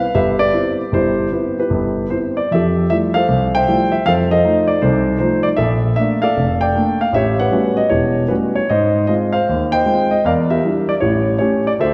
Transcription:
Already playing: B4 F5
0.15 G1 G4 B4 E5
0.39 G4 B4 D5
0.53 B3 C4 E4
0.92 G1 E4 G4 C5
1.32 B3 C4 E4
1.59 E4 G4 B4
1.70 G1
2.10 B3 C4 E4 C5
2.37 D5
2.51 F2 G4 A4 E5
2.90 F3 G3 A3 E4 E5
3.14 A4 C5 F5
3.28 C2
3.55 C5 E5 G5
3.68 F3 G3 A3 E4
3.92 E5
4.06 F2 A4 C5 F5
4.31 A4 C5 D#5
4.44 F3 A3 D#4
4.67 D5
4.82 C2 D#4 A4 C5
5.19 F3 A3 D#4 C5
5.43 D5
5.57 A#1 A4 E5
5.96 A3 A#3 D4 E5
6.22 A4 D5 F5
6.37 F1
6.61 D5 G5
6.75 A3 A#3 D4
7.01 F5
7.13 A1 G4 C#5 E5
7.40 B4 C#5 F#5
7.51 G3 A3 B3 C#4 F#4
7.77 D#5
7.90 E1 E4 G4 C#5
8.28 G3 A3 B3 C#4 F#4 B4
8.55 C#5
8.70 G#2 C5 D#5
9.07 G#3 C4 F4 D#5
9.33 C5 F5
9.49 D#2
9.72 C5 D#5 G5
9.86 G#3 C4 F4
10.11 D#5
10.25 E2 A#4 D5 F5
10.50 G4 A#4 E5
10.64 G3 D4 E4
10.89 D5
11.00 A1 E4 G4 C#5
11.39 A3 C#4 G4 C#5
11.67 D5
11.79 D2 A4 C5 E5

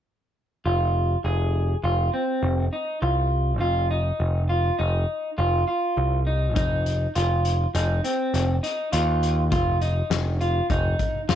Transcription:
0.66 F1 F4
1.24 F1 G#4
1.84 F1 F4
2.14 C4
2.43 F1
2.73 D#4
3.02 C2 F4
3.61 F1 F4
3.91 D#4
4.20 F1
4.49 F4
4.79 F1 D#4
5.38 F1 F4
5.68 F4
5.97 C2
6.27 D#4
6.56 F1 D#4, kick, closed hi-hat
6.86 closed hi-hat
7.15 F1 F4, closed hi-hat
7.45 closed hi-hat
7.75 F1 D#4, closed hi-hat
8.04 C4, closed hi-hat
8.34 F1, closed hi-hat
8.63 D#4, closed hi-hat
8.92 D#2 F4, closed hi-hat
9.23 closed hi-hat
9.52 F1 F4, kick, closed hi-hat
9.82 D#4, closed hi-hat
10.10 F1, snare, closed hi-hat
10.41 F4, closed hi-hat
10.70 F1 D#4, kick, closed hi-hat
10.99 kick, closed hi-hat
11.29 F1 F4, snare, closed hi-hat

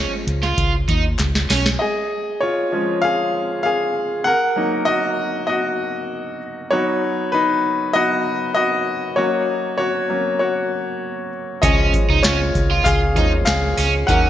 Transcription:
Already playing: F3 G#3 C#4
0.27 C#2, closed hi-hat
0.43 F4, snare
0.58 C#2, kick, closed hi-hat
0.88 D#2 D#4, kick, closed hi-hat
1.19 C#2, snare, clap, closed hi-hat
1.35 snare
1.50 B1 C#4, snare, open hi-hat
1.66 snare
1.79 G#4 D#5
2.41 F4 C#5
2.72 F3 G#3 C#4
3.02 G#4 F5
3.63 G#4 F5
4.24 A#4 F#5
4.56 F#3 A#3 D#4
4.85 F#4 D#5
5.47 F#4 D#5
6.71 F#3 B3 D#4 F#4 C#5
7.32 D#4 B4
7.93 F#3 B3 D#4 F#4 D#5
8.54 F#4 D#5
9.16 F#3 A#3 C#4 F#4 C#5
9.78 F#4 C#5
10.09 F#3 A#3 C#4
10.39 F#4 C#5
11.62 C#2 F3 G#3 C#4 G#4 D#5, kick, open hi-hat
11.94 kick, open hi-hat
12.09 C#2 D#4
12.23 C#2 C#4 F4 C#5, snare, clap, open hi-hat
12.55 C#2, kick, open hi-hat
12.71 F4
12.84 C#2 G#4 F5, kick, clap, open hi-hat
13.15 D#2 F3 G#3 C#4 D#4, kick, open hi-hat
13.45 C#2 G#4 F5, snare, clap, open hi-hat
13.78 C#2 C#4, open hi-hat
14.07 D#2 F#3 A#3 C#4 D#4 A#4 F#5, kick, open hi-hat

